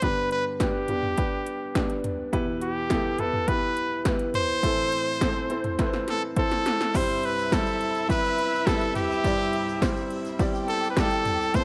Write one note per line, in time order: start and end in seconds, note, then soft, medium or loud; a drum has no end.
0.02 2.30 G2 soft
0.02 2.30 D3 medium
0.02 0.54 B3 medium
0.02 0.54 D4 medium
0.02 0.54 G4 medium
0.02 0.31 B4 medium
0.02 0.54 B4 medium
0.02 kick medium
0.02 closed hi-hat medium
0.31 0.45 B4 medium
0.31 closed hi-hat medium
0.60 0.86 B3 medium
0.60 0.86 D4 medium
0.60 0.86 G4 medium
0.60 2.01 G4 medium
0.60 0.86 B4 medium
0.60 kick loud
0.60 snare loud
0.60 closed hi-hat medium
0.88 1.14 B3 medium
0.88 1.14 D4 medium
0.88 1.15 G4 medium
0.88 1.15 B4 medium
0.88 closed hi-hat medium
0.88 floor tom soft
1.03 floor tom medium
1.17 1.68 B3 medium
1.17 1.69 D4 medium
1.17 1.69 G4 medium
1.17 1.69 B4 medium
1.17 kick loud
1.17 closed hi-hat medium
1.46 closed hi-hat medium
1.75 2.27 B3 medium
1.75 2.27 D4 medium
1.75 2.27 G4 medium
1.75 2.27 D5 medium
1.75 kick loud
1.75 snare loud
1.75 closed hi-hat medium
1.90 closed hi-hat soft
2.04 closed hi-hat medium
2.04 floor tom medium
2.33 4.60 E2 medium
2.33 4.59 B2 medium
2.33 2.84 B3 loud
2.33 2.84 E4 medium
2.33 2.84 G4 medium
2.33 2.84 B4 loud
2.33 kick medium
2.33 closed hi-hat medium
2.62 3.21 G4 medium
2.62 closed hi-hat medium
2.90 3.16 B3 medium
2.90 3.16 E4 medium
2.90 3.16 G4 medium
2.90 3.16 A4 medium
2.90 kick loud
2.90 snare loud
2.90 closed hi-hat medium
3.18 3.45 B3 medium
3.18 3.45 E4 medium
3.18 3.45 G4 medium
3.18 3.49 A4 medium
3.18 3.45 B4 medium
3.18 closed hi-hat medium
3.18 floor tom medium
3.33 floor tom medium
3.48 3.99 B3 medium
3.48 3.99 E4 medium
3.48 4.00 G4 medium
3.48 4.06 B4 medium
3.48 4.00 B4 medium
3.48 kick loud
3.48 closed hi-hat medium
3.77 closed hi-hat medium
4.05 4.57 B3 medium
4.05 4.57 E4 medium
4.05 4.57 G4 medium
4.05 4.57 B4 medium
4.05 kick loud
4.05 snare loud
4.05 closed hi-hat loud
4.19 closed hi-hat soft
4.34 6.04 C5 loud
4.34 closed hi-hat medium
4.34 floor tom medium
4.63 6.91 A2 medium
4.63 6.90 E3 medium
4.63 5.15 C4 medium
4.63 5.15 E4 medium
4.63 5.15 A4 medium
4.63 5.15 C5 medium
4.63 kick loud
4.63 closed hi-hat medium
4.92 closed hi-hat medium
5.21 5.47 C4 medium
5.21 5.47 E4 medium
5.21 5.47 A4 medium
5.21 5.47 C5 medium
5.21 kick loud
5.21 snare loud
5.21 closed hi-hat medium
5.50 5.76 C4 medium
5.50 5.76 E4 medium
5.50 5.76 A4 medium
5.50 5.76 C5 medium
5.50 closed hi-hat medium
5.64 closed hi-hat soft
5.64 floor tom medium
5.79 6.30 C4 medium
5.79 6.30 E4 medium
5.79 6.30 A4 medium
5.79 5.86 B4 medium
5.79 kick loud
5.79 snare medium
5.79 closed hi-hat loud
5.86 6.34 C5 loud
5.93 snare medium
6.08 6.22 A4 loud
6.08 snare medium
6.08 closed hi-hat medium
6.36 6.88 C4 medium
6.36 6.88 E4 medium
6.36 6.88 A4 medium
6.36 6.98 A4 loud
6.36 6.88 C5 medium
6.36 kick loud
6.36 closed hi-hat loud
6.51 snare medium
6.51 closed hi-hat soft
6.66 snare loud
6.66 closed hi-hat medium
6.81 snare medium
6.94 9.21 C2 medium
6.94 9.21 G2 medium
6.94 7.45 G3 medium
6.94 7.45 C4 medium
6.94 10.36 E4 medium
6.94 7.45 E4 medium
6.94 7.46 G4 medium
6.94 7.46 C5 loud
6.94 7.27 C5 loud
6.94 10.35 E5 medium
6.94 kick loud
6.94 crash loud
6.94 ride medium
6.94 shaker medium
7.10 shaker soft
7.23 7.55 B4 medium
7.23 ride medium
7.38 shaker medium
7.51 8.02 G3 medium
7.51 8.02 C4 medium
7.51 8.02 E4 medium
7.51 8.03 G4 medium
7.51 8.10 A4 medium
7.51 8.03 C5 medium
7.51 kick loud
7.51 snare loud
7.51 ride medium
7.51 shaker medium
7.66 shaker medium
7.81 ride medium
7.95 ride soft
7.95 shaker soft
8.08 8.59 G3 medium
8.08 8.60 C4 medium
8.08 8.60 E4 medium
8.08 8.60 G4 medium
8.08 8.68 B4 loud
8.08 8.60 E5 medium
8.08 kick loud
8.08 ride medium
8.08 shaker medium
8.25 shaker soft
8.38 ride medium
8.55 shaker medium
8.66 9.17 G3 medium
8.66 9.17 C4 medium
8.66 9.17 E4 medium
8.66 9.17 G4 medium
8.66 8.95 A4 medium
8.66 9.18 B4 medium
8.66 kick loud
8.66 snare loud
8.66 ride medium
8.66 shaker medium
8.81 ride soft
8.81 shaker soft
8.95 10.06 G4 loud
8.95 floor tom medium
8.95 ride medium
8.95 shaker medium
9.12 shaker soft
9.24 11.51 C2 medium
9.24 11.51 G2 medium
9.24 9.76 G3 medium
9.24 9.75 C4 medium
9.24 9.76 E4 medium
9.24 9.76 G4 medium
9.24 9.76 D5 loud
9.24 kick medium
9.24 ride medium
9.24 shaker medium
9.42 shaker soft
9.53 ride medium
9.69 shaker soft
9.81 10.32 G3 medium
9.81 10.32 C4 medium
9.81 10.32 E4 medium
9.81 10.33 G4 medium
9.81 10.33 C5 loud
9.81 kick loud
9.81 snare loud
9.81 ride medium
9.81 shaker medium
9.96 shaker soft
10.10 ride medium
10.25 ride soft
10.25 shaker medium
10.38 10.90 G3 loud
10.38 10.90 C4 medium
10.38 10.90 E4 medium
10.38 11.52 G4 medium
10.38 10.91 G4 medium
10.38 10.91 D5 loud
10.38 11.52 G5 medium
10.38 kick loud
10.38 ride medium
10.38 shaker medium
10.55 shaker soft
10.68 10.88 A4 loud
10.68 ride medium
10.84 shaker medium
10.90 11.00 B4 medium
10.97 11.48 G3 medium
10.97 11.48 C4 medium
10.97 11.48 E4 medium
10.97 11.48 G4 medium
10.97 11.57 A4 loud
10.97 11.48 D5 medium
10.97 kick loud
10.97 snare loud
10.97 ride medium
10.97 shaker medium
11.11 ride soft
11.11 shaker soft
11.25 floor tom medium
11.25 ride medium
11.25 shaker medium
11.41 shaker medium
11.54 11.64 A1 medium
11.54 11.64 E2 medium
11.54 11.64 A3 medium
11.54 11.64 C4 medium
11.54 11.64 E4 medium
11.54 11.64 A4 medium
11.54 11.61 B4 medium
11.54 11.64 C5 loud
11.54 11.64 A5 medium
11.54 kick medium
11.54 ride medium
11.54 shaker medium